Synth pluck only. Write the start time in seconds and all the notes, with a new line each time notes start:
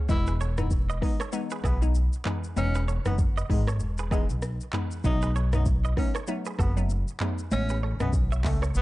0.09 E3 G#3 B3 D#5
0.58 E3 G#3 B3 D#4
1.02 E3 G#3 B3 D#4
1.32 E3 G#3 B3 D#4
1.81 E3 G#3 B3 D#4
2.25 E3 G#3 B3 D#4
2.56 E3 G#3 B3 D#4
3.06 E3 G#3 B3 D#4
3.49 E3 G#3 B3 D#4
4.11 E3 G#3 B3 D#4
4.73 E3 G#3 B3 D#4
5.04 F#3 A3 B3 D#4
5.53 F#3 A3 B3 D#4
5.97 F#3 A3 B3 D#4
6.28 F#3 A3 B3 D#4
6.77 F#3 A3 B3 D#4
7.21 F#3 A3 B3 D#4
7.51 G#3 A3 B3 C#4
8.00 G#3 A3 B3 C#4
8.44 G#3 A3 B3 C#4